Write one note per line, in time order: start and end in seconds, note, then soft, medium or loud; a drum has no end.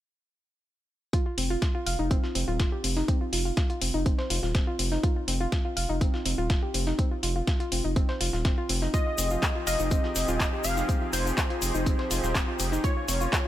1.13 1.17 F4 medium
1.13 kick loud
1.13 closed hi-hat medium
1.26 1.35 F4 medium
1.38 1.57 F1 medium
1.38 1.44 C4 medium
1.38 closed hi-hat medium
1.38 open hi-hat loud
1.50 1.57 F4 loud
1.62 1.66 F4 loud
1.62 kick loud
1.62 snare loud
1.62 closed hi-hat medium
1.75 1.78 F4 medium
1.86 1.96 F1 medium
1.86 1.93 F5 medium
1.86 closed hi-hat medium
1.86 open hi-hat loud
1.99 2.18 F1 medium
1.99 2.05 D#4 loud
2.11 2.15 C4 loud
2.11 kick loud
2.11 closed hi-hat medium
2.23 2.30 F4 medium
2.23 snare soft
2.35 2.45 F1 medium
2.35 2.42 C4 medium
2.35 closed hi-hat medium
2.35 open hi-hat medium
2.48 2.66 D#1 loud
2.48 2.54 F4 medium
2.59 2.64 F4 loud
2.59 kick loud
2.59 snare loud
2.59 closed hi-hat medium
2.72 2.78 G4 medium
2.84 3.03 F1 medium
2.84 2.88 C4 medium
2.84 closed hi-hat medium
2.84 open hi-hat loud
2.96 3.03 D#4 loud
2.96 snare soft
3.08 3.12 C4 loud
3.08 kick loud
3.08 closed hi-hat medium
3.21 3.25 F4 medium
3.33 3.52 F1 medium
3.33 3.40 F4 medium
3.33 closed hi-hat medium
3.33 open hi-hat loud
3.45 3.52 F4 medium
3.57 3.67 F4 medium
3.57 kick loud
3.57 snare loud
3.57 closed hi-hat medium
3.70 3.76 F4 loud
3.70 closed hi-hat soft
3.81 3.91 F1 medium
3.81 3.86 C4 medium
3.81 closed hi-hat medium
3.81 open hi-hat loud
3.94 4.13 F1 medium
3.94 4.00 D#4 loud
4.06 4.10 C4 medium
4.06 kick loud
4.06 closed hi-hat medium
4.18 4.25 C5 loud
4.18 snare soft
4.30 4.40 F1 medium
4.30 4.37 F4 medium
4.30 closed hi-hat medium
4.30 open hi-hat loud
4.43 4.61 D#1 loud
4.43 4.49 F4 medium
4.43 snare soft
4.55 4.59 C4 loud
4.55 kick loud
4.55 snare loud
4.55 closed hi-hat medium
4.67 4.74 F4 loud
4.79 4.98 F1 medium
4.79 4.83 C4 medium
4.79 closed hi-hat medium
4.79 open hi-hat loud
4.92 4.98 D#4 loud
4.92 snare soft
5.03 5.08 F4 loud
5.03 kick loud
5.03 closed hi-hat medium
5.16 5.26 F4 medium
5.28 5.47 F1 loud
5.28 5.35 C4 medium
5.28 closed hi-hat medium
5.28 open hi-hat loud
5.40 5.47 F4 loud
5.52 5.56 F4 loud
5.52 kick loud
5.52 snare loud
5.52 closed hi-hat medium
5.65 5.69 F4 loud
5.77 5.86 F1 medium
5.77 5.83 F5 medium
5.77 closed hi-hat medium
5.77 open hi-hat loud
5.89 6.08 F1 medium
5.89 5.96 D#4 loud
6.01 6.05 C4 loud
6.01 kick loud
6.01 closed hi-hat medium
6.14 6.20 F4 medium
6.14 snare soft
6.25 6.35 F1 medium
6.25 6.32 C4 medium
6.25 closed hi-hat medium
6.25 open hi-hat loud
6.38 6.57 D#1 loud
6.38 6.44 F4 loud
6.50 6.54 F4 loud
6.50 kick loud
6.50 snare loud
6.50 closed hi-hat medium
6.63 6.69 G4 medium
6.74 6.93 F1 medium
6.74 6.78 C4 medium
6.74 closed hi-hat medium
6.74 open hi-hat loud
6.87 6.93 D#4 loud
6.87 snare medium
6.99 7.03 C4 loud
6.99 kick loud
6.99 closed hi-hat medium
7.11 7.15 F4 medium
7.23 7.42 F1 medium
7.23 7.30 F4 medium
7.23 closed hi-hat medium
7.23 open hi-hat loud
7.36 7.42 F4 medium
7.47 7.58 F4 medium
7.47 kick loud
7.47 snare loud
7.47 closed hi-hat medium
7.60 7.66 F4 loud
7.60 closed hi-hat soft
7.72 7.82 F1 medium
7.72 7.76 C4 medium
7.72 closed hi-hat medium
7.72 open hi-hat loud
7.84 8.03 F1 medium
7.84 7.91 D#4 medium
7.96 8.00 C4 loud
7.96 kick loud
7.96 closed hi-hat medium
8.09 8.15 C5 loud
8.09 snare medium
8.21 8.30 F1 medium
8.21 8.27 F4 medium
8.21 closed hi-hat medium
8.21 open hi-hat loud
8.33 8.52 D#1 loud
8.33 8.39 F4 medium
8.33 snare soft
8.45 8.49 C4 loud
8.45 kick loud
8.45 snare loud
8.45 closed hi-hat medium
8.58 8.64 F4 loud
8.69 8.88 F1 medium
8.69 8.73 C4 medium
8.69 closed hi-hat medium
8.69 open hi-hat loud
8.82 8.88 D#4 loud
8.82 snare soft
8.94 12.80 F3 medium
8.94 12.80 C4 medium
8.94 12.80 D#4 medium
8.94 8.98 F4 loud
8.94 12.80 G4 medium
8.94 12.80 G#4 medium
8.94 9.58 D#5 loud
8.94 kick loud
8.94 closed hi-hat medium
8.94 shaker soft
9.07 9.16 F4 medium
9.18 9.37 F1 loud
9.18 9.25 C4 medium
9.18 closed hi-hat medium
9.18 open hi-hat loud
9.18 shaker loud
9.30 9.37 F4 loud
9.30 shaker medium
9.42 kick loud
9.42 snare loud
9.42 clap loud
9.42 closed hi-hat medium
9.42 shaker soft
9.55 9.59 F4 loud
9.67 9.77 F1 medium
9.67 10.66 D#5 loud
9.67 9.74 F5 medium
9.67 closed hi-hat medium
9.67 open hi-hat loud
9.67 shaker medium
9.79 9.98 F1 medium
9.79 9.86 D#4 loud
9.79 shaker medium
9.91 9.95 C4 loud
9.91 kick loud
9.91 closed hi-hat medium
9.91 shaker soft
10.04 10.10 F4 medium
10.04 snare soft
10.15 10.25 F1 medium
10.15 10.23 C4 medium
10.15 closed hi-hat medium
10.15 open hi-hat loud
10.15 shaker medium
10.28 10.47 D#1 loud
10.28 10.35 F4 loud
10.28 shaker soft
10.40 10.44 F4 loud
10.40 kick loud
10.40 snare loud
10.40 clap loud
10.40 closed hi-hat medium
10.40 shaker soft
10.53 10.59 G4 medium
10.64 10.83 F1 loud
10.64 10.69 C4 medium
10.64 11.09 F5 medium
10.64 closed hi-hat medium
10.64 open hi-hat loud
10.64 shaker medium
10.77 10.83 D#4 loud
10.77 snare medium
10.77 shaker medium
10.89 10.93 C4 loud
10.89 kick loud
10.89 closed hi-hat medium
10.89 shaker soft
11.01 11.05 F4 medium
11.13 11.32 F1 loud
11.13 11.20 F4 medium
11.13 12.75 C5 loud
11.13 closed hi-hat medium
11.13 open hi-hat loud
11.13 shaker medium
11.26 11.32 F4 medium
11.26 shaker soft
11.38 11.48 F4 medium
11.38 kick loud
11.38 snare loud
11.38 clap loud
11.38 closed hi-hat medium
11.38 shaker soft
11.50 11.57 F4 loud
11.50 closed hi-hat soft
11.62 11.72 F1 medium
11.62 11.66 C4 medium
11.62 closed hi-hat medium
11.62 open hi-hat loud
11.62 shaker medium
11.75 11.93 F1 medium
11.75 11.81 D#4 loud
11.75 shaker soft
11.86 11.90 C4 loud
11.86 kick loud
11.86 closed hi-hat medium
11.86 shaker soft
11.99 12.05 C5 loud
11.99 snare soft
12.11 12.21 F1 medium
12.11 12.18 F4 medium
12.11 closed hi-hat medium
12.11 open hi-hat loud
12.11 shaker medium
12.23 12.42 D#1 loud
12.23 12.30 F4 medium
12.23 snare soft
12.23 shaker soft
12.35 12.39 C4 loud
12.35 kick loud
12.35 snare loud
12.35 clap loud
12.35 closed hi-hat medium
12.35 shaker soft
12.48 12.54 F4 loud
12.59 12.79 F1 loud
12.59 12.64 C4 medium
12.59 closed hi-hat medium
12.59 open hi-hat loud
12.59 shaker medium
12.72 12.79 D#4 loud
12.72 snare soft
12.72 shaker soft
12.84 13.48 A#3 medium
12.84 13.48 C#4 medium
12.84 13.48 F4 medium
12.84 12.88 F4 loud
12.84 13.48 C#5 loud
12.84 kick loud
12.84 closed hi-hat medium
12.84 shaker soft
12.97 13.06 F4 medium
13.08 13.27 F1 loud
13.08 13.15 C4 medium
13.08 closed hi-hat medium
13.08 open hi-hat loud
13.08 shaker medium
13.21 13.27 F4 loud
13.21 shaker soft
13.33 13.37 F4 loud
13.33 kick loud
13.33 snare loud
13.33 clap loud
13.33 closed hi-hat medium
13.33 shaker soft